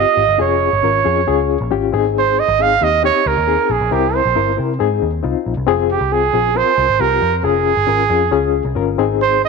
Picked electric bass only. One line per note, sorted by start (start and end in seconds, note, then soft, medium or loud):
0.17 0.27 G#1 medium
0.29 0.38 G1 medium
0.40 0.67 F1 medium
0.73 0.82 G1 medium
0.84 1.02 G#1 medium
1.06 1.24 F2 medium
1.28 1.56 C#2 medium
1.61 1.70 A#1 medium
1.71 1.90 G#1 medium
1.94 2.40 G#1 medium
2.48 2.76 G#1 medium
2.82 3.10 D#2 medium
3.26 3.35 C#2 medium
3.37 3.56 D#2 medium
3.70 3.79 A#1 medium
3.81 3.90 A#1 medium
3.92 4.20 C2 loud
4.25 4.35 A#1 medium
4.37 4.55 G1 medium
4.59 4.77 C3 medium
4.81 4.99 G#2 medium
5.02 5.21 D#2 medium
5.24 5.34 C2 medium
5.46 5.56 A#1 medium
5.57 5.66 C2 medium
5.68 5.96 F1 loud
6.01 6.29 C2 medium
6.34 6.62 A#1 medium
6.78 6.87 C2 medium
6.89 6.98 G#1 medium
7.00 7.18 C2 medium
7.22 7.41 F2 medium
7.44 7.72 F1 loud
7.77 7.86 G1 medium
7.88 8.07 G#1 medium
8.10 8.29 F2 medium
8.32 8.60 C#2 medium
8.65 8.74 C2 medium
8.76 8.95 G1 loud
8.98 9.45 G#1 medium